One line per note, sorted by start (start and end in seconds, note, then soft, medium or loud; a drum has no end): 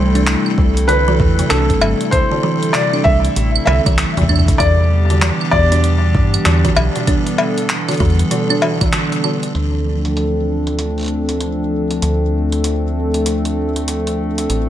0.00 0.36 C2 loud
0.00 4.56 G3 medium
0.00 4.56 A3 medium
0.00 4.56 C4 medium
0.00 4.56 E4 medium
0.00 4.56 A4 medium
0.00 0.53 C5 medium
0.15 0.19 D4 medium
0.15 closed hi-hat soft
0.27 clap loud
0.27 closed hi-hat medium
0.46 claves soft
0.58 1.21 C2 medium
0.58 kick loud
0.77 closed hi-hat medium
0.88 1.05 D3 medium
0.88 1.52 B4 loud
0.88 closed hi-hat medium
1.08 1.14 E3 loud
1.20 1.43 E2 medium
1.20 kick loud
1.39 1.43 C3 medium
1.39 closed hi-hat soft
1.49 1.74 C2 medium
1.49 1.57 D4 medium
1.49 2.14 A4 medium
1.49 clap loud
1.49 closed hi-hat medium
1.49 claves medium
1.70 kick medium
1.70 closed hi-hat soft
1.81 1.94 G1 medium
1.81 cowbell medium
1.81 claves medium
2.01 closed hi-hat soft
2.11 2.76 C5 loud
2.11 kick loud
2.11 closed hi-hat medium
2.31 2.41 D3 medium
2.43 2.54 E3 loud
2.63 closed hi-hat soft
2.73 2.81 C3 medium
2.73 3.06 D5 loud
2.73 clap loud
2.73 closed hi-hat medium
2.93 2.97 D4 medium
2.93 claves soft
3.04 3.28 C2 medium
3.04 3.64 E5 loud
3.04 kick loud
3.25 closed hi-hat medium
3.36 3.59 A1 medium
3.36 closed hi-hat medium
3.56 claves medium
3.65 3.80 C2 loud
3.65 3.83 D3 medium
3.65 4.62 E5 loud
3.65 cowbell loud
3.86 4.04 C2 medium
3.86 3.93 E3 loud
3.86 kick loud
3.86 closed hi-hat medium
3.86 claves medium
3.98 clap loud
3.98 closed hi-hat medium
4.17 4.50 E2 medium
4.17 4.21 C3 medium
4.17 kick medium
4.17 closed hi-hat soft
4.23 kick medium
4.29 4.35 D4 medium
4.29 kick medium
4.29 claves medium
4.36 kick soft
4.36 claves soft
4.39 claves soft
4.48 4.56 G1 medium
4.48 kick loud
4.48 closed hi-hat medium
4.58 5.31 E2 loud
4.58 9.51 E3 medium
4.58 9.51 G3 medium
4.58 9.51 B3 medium
4.58 9.51 D4 medium
4.58 7.05 G4 medium
4.58 5.50 D5 loud
4.58 kick loud
4.58 closed hi-hat medium
4.58 claves medium
5.10 5.20 D3 medium
5.10 closed hi-hat soft
5.22 5.32 E3 loud
5.22 clap loud
5.22 closed hi-hat medium
5.41 claves soft
5.51 6.16 E2 medium
5.51 5.59 B2 medium
5.51 8.88 D5 loud
5.51 kick loud
5.72 5.76 D4 medium
5.72 closed hi-hat medium
5.84 closed hi-hat medium
6.15 6.38 G2 medium
6.15 kick loud
6.34 closed hi-hat medium
6.34 claves medium
6.46 6.69 E2 medium
6.46 6.61 D3 medium
6.46 clap loud
6.46 closed hi-hat medium
6.65 6.71 E3 loud
6.65 kick medium
6.65 closed hi-hat soft
6.76 6.89 B1 medium
6.76 cowbell loud
6.76 claves medium
6.96 6.99 B2 medium
6.96 closed hi-hat medium
7.07 7.14 D4 medium
7.07 9.52 A4 medium
7.07 kick loud
7.07 closed hi-hat medium
7.27 closed hi-hat soft
7.38 cowbell medium
7.58 closed hi-hat medium
7.69 clap loud
7.69 closed hi-hat medium
7.88 7.98 D3 medium
7.88 closed hi-hat soft
7.88 claves soft
7.91 closed hi-hat soft
7.94 closed hi-hat soft
7.97 8.11 E3 loud
7.97 kick loud
7.97 closed hi-hat soft
8.00 8.23 E2 medium
8.00 closed hi-hat soft
8.05 closed hi-hat soft
8.10 closed hi-hat soft
8.15 closed hi-hat soft
8.19 closed hi-hat medium
8.31 8.37 B2 medium
8.31 closed hi-hat medium
8.50 8.54 D4 medium
8.50 claves medium
8.62 8.78 E3 medium
8.62 cowbell loud
8.81 8.88 E3 medium
8.81 kick loud
8.81 closed hi-hat medium
8.81 claves medium
8.93 8.99 D3 medium
8.93 clap loud
8.93 closed hi-hat medium
9.12 closed hi-hat soft
9.24 9.30 D3 medium
9.24 claves medium
9.43 closed hi-hat medium
9.55 12.00 D2 medium
9.55 14.46 F3 medium
9.55 14.69 A3 medium
9.55 14.69 C4 medium
9.55 14.46 D4 medium
9.55 14.69 A4 medium
9.55 closed hi-hat medium
10.05 closed hi-hat soft
10.17 closed hi-hat medium
10.67 closed hi-hat soft
10.79 closed hi-hat medium
10.98 closed hi-hat soft
10.99 closed hi-hat soft
11.01 closed hi-hat soft
11.03 closed hi-hat soft
11.04 closed hi-hat soft
11.06 closed hi-hat soft
11.08 closed hi-hat soft
11.29 closed hi-hat soft
11.40 closed hi-hat medium
11.91 closed hi-hat soft
12.02 14.47 D2 medium
12.02 closed hi-hat medium
12.52 closed hi-hat soft
12.64 closed hi-hat medium
13.14 closed hi-hat soft
13.26 closed hi-hat medium
13.45 closed hi-hat soft
13.76 closed hi-hat soft
13.88 closed hi-hat medium
14.07 closed hi-hat soft
14.38 closed hi-hat medium
14.49 14.69 A1 medium
14.49 14.69 G3 medium
14.49 14.69 E4 medium
14.49 closed hi-hat medium